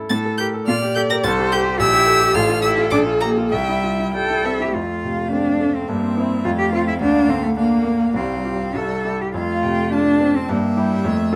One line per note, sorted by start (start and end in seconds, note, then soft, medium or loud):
0.00 0.10 A2 medium
0.00 0.13 E4 soft
0.00 0.13 A4 soft
0.00 0.13 A#4 soft
0.10 0.66 A2 medium
0.10 0.38 A4 medium
0.10 0.18 A6 medium
0.25 0.48 A4 medium
0.38 0.48 G4 medium
0.38 0.54 A#4 soft
0.38 0.46 G6 medium
0.54 0.68 A4 medium
0.67 1.22 A#2 medium
0.67 0.76 F4 medium
0.67 1.26 D5 medium
0.67 0.95 F6 medium
0.82 1.04 G4 medium
0.95 1.02 G4 medium
0.95 1.10 A4 soft
0.95 1.01 G6 loud
1.10 1.24 G4 medium
1.10 1.16 A#4 medium
1.10 1.16 A#6 loud
1.24 1.78 C2 medium
1.24 1.54 A4 medium
1.24 1.80 C5 medium
1.24 1.32 A6 loud
1.38 1.60 G4 medium
1.52 1.81 G4 medium
1.52 1.66 A4 medium
1.52 1.60 G6 medium
1.66 1.80 G4 medium
1.79 2.33 A#1 medium
1.79 2.35 E4 loud
1.79 2.37 G4 medium
1.79 2.36 E6 loud
1.93 2.15 G4 medium
2.06 2.21 A4 medium
2.20 2.35 G4 medium
2.34 2.90 A1 medium
2.34 2.63 F4 medium
2.34 3.54 A4 medium
2.34 2.62 F6 loud
2.49 2.72 F4 medium
2.62 2.91 E4 medium
2.62 2.78 G4 medium
2.62 2.70 E6 medium
2.78 2.92 F4 medium
2.91 3.50 A#1 medium
2.91 3.00 D4 medium
2.91 2.99 D6 medium
3.06 3.30 F4 medium
3.21 3.54 A#3 medium
3.21 3.37 G4 soft
3.21 3.29 A#5 loud
3.37 3.53 F4 medium
3.51 4.72 C2 medium
3.51 4.14 G3 medium
3.51 4.08 E5 medium
3.51 4.12 G5 medium
3.69 3.93 E4 soft
3.84 3.99 F4 soft
4.00 4.24 E4 soft
4.14 4.39 G3 soft
4.14 4.63 A4 medium
4.14 4.46 G5 medium
4.30 4.54 E4 soft
4.45 4.69 C4 soft
4.45 4.74 E5 medium
4.60 4.75 E4 soft
4.60 4.76 G4 medium
4.74 5.85 F2 soft
4.74 5.89 A3 soft
4.74 5.31 F4 medium
4.74 5.89 F5 soft
5.04 5.50 C3 soft
5.32 5.77 C4 soft
5.32 5.77 D4 medium
5.61 5.89 A3 soft
5.75 5.90 C4 medium
5.88 6.43 G2 medium
5.88 6.43 A#3 medium
5.88 6.46 C4 medium
5.88 6.47 E5 soft
6.17 6.42 C4 soft
6.17 6.43 E4 soft
6.44 6.99 F2 medium
6.44 7.00 A3 medium
6.44 6.50 F4 medium
6.44 7.00 F5 medium
6.59 6.72 G4 medium
6.72 6.98 C4 soft
6.72 6.86 F4 medium
6.72 6.98 F4 soft
6.88 6.93 E4 medium
7.01 8.12 D2 medium
7.01 7.53 A#3 medium
7.01 7.31 D4 medium
7.01 7.53 F5 medium
7.28 7.74 D3 soft
7.28 7.43 C4 medium
7.43 7.49 A3 medium
7.57 8.17 A#3 medium
7.57 8.14 A#3 medium
7.57 8.03 D4 soft
7.57 8.15 F5 medium
7.85 8.15 A#3 soft
8.14 8.73 C2 medium
8.14 8.74 G3 soft
8.14 8.77 C4 medium
8.14 8.77 F5 soft
8.45 8.72 F4 soft
8.45 8.72 G4 soft
8.75 9.32 C2 soft
8.75 9.13 G3 soft
8.75 9.23 A4 medium
8.75 9.14 E5 soft
9.04 9.31 E4 soft
9.04 9.31 G4 soft
9.21 9.34 G4 medium
9.34 10.45 F2 medium
9.34 10.45 A3 medium
9.34 9.92 F4 medium
9.34 9.65 F5 medium
9.64 10.10 C3 soft
9.64 9.94 G5 medium
9.92 10.37 D4 medium
9.92 10.38 F4 soft
9.92 10.50 A5 medium
10.21 10.49 C4 soft
10.36 10.51 C4 medium
10.48 11.03 G2 medium
10.48 10.58 G3 medium
10.48 11.05 A#3 medium
10.48 11.36 E5 medium
10.77 11.07 G3 medium
10.77 11.02 E4 soft
10.77 11.02 G4 medium
11.04 11.36 F2 medium
11.04 11.36 A3 medium
11.32 11.36 F4 medium